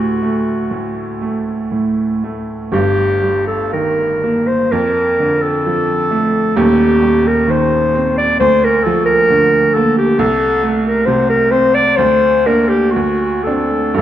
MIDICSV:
0, 0, Header, 1, 3, 480
1, 0, Start_track
1, 0, Tempo, 998336
1, 1314, Time_signature, 4, 2, 24, 8
1, 2268, Tempo, 921659
1, 4188, Tempo, 891530
1, 6108, Tempo, 964630
1, 6588, Tempo, 1027397
1, 7094, End_track
2, 0, Start_track
2, 0, Title_t, "Clarinet"
2, 0, Program_c, 0, 71
2, 0, Note_on_c, 0, 66, 76
2, 825, Note_off_c, 0, 66, 0
2, 1312, Note_on_c, 0, 67, 90
2, 1651, Note_off_c, 0, 67, 0
2, 1669, Note_on_c, 0, 69, 77
2, 1789, Note_off_c, 0, 69, 0
2, 1793, Note_on_c, 0, 70, 87
2, 2149, Note_on_c, 0, 72, 85
2, 2156, Note_off_c, 0, 70, 0
2, 2267, Note_on_c, 0, 70, 95
2, 2275, Note_off_c, 0, 72, 0
2, 2636, Note_on_c, 0, 69, 100
2, 2644, Note_off_c, 0, 70, 0
2, 3229, Note_on_c, 0, 67, 100
2, 3237, Note_off_c, 0, 69, 0
2, 3599, Note_on_c, 0, 70, 89
2, 3607, Note_off_c, 0, 67, 0
2, 3717, Note_on_c, 0, 72, 94
2, 3725, Note_off_c, 0, 70, 0
2, 4069, Note_off_c, 0, 72, 0
2, 4072, Note_on_c, 0, 74, 100
2, 4182, Note_off_c, 0, 74, 0
2, 4185, Note_on_c, 0, 72, 114
2, 4316, Note_on_c, 0, 70, 99
2, 4324, Note_off_c, 0, 72, 0
2, 4422, Note_on_c, 0, 69, 93
2, 4430, Note_off_c, 0, 70, 0
2, 4536, Note_off_c, 0, 69, 0
2, 4539, Note_on_c, 0, 70, 109
2, 4908, Note_on_c, 0, 69, 101
2, 4916, Note_off_c, 0, 70, 0
2, 5029, Note_off_c, 0, 69, 0
2, 5032, Note_on_c, 0, 67, 98
2, 5150, Note_on_c, 0, 69, 118
2, 5158, Note_off_c, 0, 67, 0
2, 5424, Note_off_c, 0, 69, 0
2, 5515, Note_on_c, 0, 70, 92
2, 5618, Note_on_c, 0, 72, 105
2, 5626, Note_off_c, 0, 70, 0
2, 5739, Note_off_c, 0, 72, 0
2, 5746, Note_on_c, 0, 70, 93
2, 5861, Note_on_c, 0, 72, 100
2, 5869, Note_off_c, 0, 70, 0
2, 5988, Note_on_c, 0, 74, 102
2, 5996, Note_off_c, 0, 72, 0
2, 6107, Note_on_c, 0, 72, 110
2, 6115, Note_off_c, 0, 74, 0
2, 6353, Note_on_c, 0, 70, 93
2, 6360, Note_off_c, 0, 72, 0
2, 6464, Note_on_c, 0, 67, 90
2, 6471, Note_off_c, 0, 70, 0
2, 6578, Note_on_c, 0, 66, 85
2, 6585, Note_off_c, 0, 67, 0
2, 6822, Note_on_c, 0, 69, 89
2, 6829, Note_off_c, 0, 66, 0
2, 7067, Note_off_c, 0, 69, 0
2, 7069, Note_on_c, 0, 69, 99
2, 7094, Note_off_c, 0, 69, 0
2, 7094, End_track
3, 0, Start_track
3, 0, Title_t, "Grand piano"
3, 0, Program_c, 1, 0
3, 0, Control_c, 1, 64, 127
3, 0, Note_on_c, 1, 38, 68
3, 0, Note_on_c, 1, 45, 43
3, 0, Note_on_c, 1, 57, 47
3, 108, Note_off_c, 1, 57, 0
3, 108, Note_on_c, 1, 57, 47
3, 252, Note_off_c, 1, 45, 0
3, 329, Note_off_c, 1, 38, 0
3, 342, Note_on_c, 1, 45, 43
3, 489, Note_off_c, 1, 57, 0
3, 584, Note_on_c, 1, 57, 43
3, 728, Note_off_c, 1, 45, 0
3, 825, Note_on_c, 1, 45, 44
3, 975, Note_off_c, 1, 57, 0
3, 1076, Note_on_c, 1, 57, 41
3, 1218, Note_off_c, 1, 45, 0
3, 1307, Note_on_c, 1, 31, 59
3, 1314, Note_on_c, 1, 43, 60
3, 1315, Note_off_c, 1, 57, 0
3, 1322, Control_c, 1, 64, 0
3, 1400, Control_c, 1, 64, 127
3, 1550, Note_on_c, 1, 55, 44
3, 1793, Note_on_c, 1, 51, 44
3, 1937, Note_off_c, 1, 55, 0
3, 2038, Note_on_c, 1, 58, 47
3, 2176, Note_off_c, 1, 51, 0
3, 2247, Note_off_c, 1, 31, 0
3, 2251, Note_off_c, 1, 43, 0
3, 2269, Note_on_c, 1, 41, 65
3, 2273, Note_off_c, 1, 58, 0
3, 2279, Control_c, 1, 64, 0
3, 2374, Control_c, 1, 64, 127
3, 2519, Note_on_c, 1, 50, 50
3, 2761, Note_on_c, 1, 53, 46
3, 2900, Note_off_c, 1, 50, 0
3, 2994, Note_on_c, 1, 57, 53
3, 3136, Note_off_c, 1, 53, 0
3, 3209, Note_off_c, 1, 41, 0
3, 3227, Note_on_c, 1, 27, 70
3, 3230, Note_off_c, 1, 57, 0
3, 3232, Note_on_c, 1, 39, 74
3, 3238, Control_c, 1, 64, 0
3, 3333, Control_c, 1, 64, 127
3, 3469, Note_on_c, 1, 55, 49
3, 3707, Note_on_c, 1, 51, 54
3, 3859, Note_off_c, 1, 55, 0
3, 3952, Note_on_c, 1, 60, 51
3, 4095, Note_off_c, 1, 51, 0
3, 4169, Note_off_c, 1, 27, 0
3, 4172, Note_off_c, 1, 39, 0
3, 4187, Note_on_c, 1, 38, 71
3, 4190, Note_off_c, 1, 60, 0
3, 4200, Control_c, 1, 64, 0
3, 4271, Control_c, 1, 64, 127
3, 4433, Note_on_c, 1, 53, 58
3, 4673, Note_on_c, 1, 50, 53
3, 4817, Note_off_c, 1, 53, 0
3, 4917, Note_on_c, 1, 58, 54
3, 5056, Note_off_c, 1, 50, 0
3, 5125, Note_off_c, 1, 38, 0
3, 5149, Note_on_c, 1, 36, 79
3, 5152, Note_off_c, 1, 58, 0
3, 5157, Control_c, 1, 64, 0
3, 5251, Control_c, 1, 64, 127
3, 5388, Note_on_c, 1, 57, 60
3, 5626, Note_on_c, 1, 48, 61
3, 5766, Note_off_c, 1, 57, 0
3, 5864, Note_on_c, 1, 60, 56
3, 6014, Note_off_c, 1, 48, 0
3, 6090, Note_off_c, 1, 36, 0
3, 6112, Note_off_c, 1, 60, 0
3, 6114, Note_on_c, 1, 38, 73
3, 6119, Control_c, 1, 64, 0
3, 6208, Control_c, 1, 64, 127
3, 6351, Note_on_c, 1, 58, 54
3, 6353, Note_on_c, 1, 62, 52
3, 6572, Note_off_c, 1, 58, 0
3, 6573, Note_off_c, 1, 62, 0
3, 6578, Note_off_c, 1, 38, 0
3, 6598, Control_c, 1, 64, 0
3, 6600, Note_on_c, 1, 38, 69
3, 6679, Control_c, 1, 64, 127
3, 6837, Note_on_c, 1, 62, 53
3, 6838, Note_on_c, 1, 60, 44
3, 7057, Note_off_c, 1, 60, 0
3, 7057, Note_off_c, 1, 62, 0
3, 7059, Note_on_c, 1, 43, 67
3, 7060, Note_off_c, 1, 38, 0
3, 7063, Note_on_c, 1, 55, 51
3, 7068, Note_on_c, 1, 58, 48
3, 7076, Note_on_c, 1, 31, 59
3, 7077, Note_on_c, 1, 62, 47
3, 7079, Control_c, 1, 64, 0
3, 7094, Note_off_c, 1, 31, 0
3, 7094, Note_off_c, 1, 43, 0
3, 7094, Note_off_c, 1, 55, 0
3, 7094, Note_off_c, 1, 58, 0
3, 7094, Note_off_c, 1, 62, 0
3, 7094, End_track
0, 0, End_of_file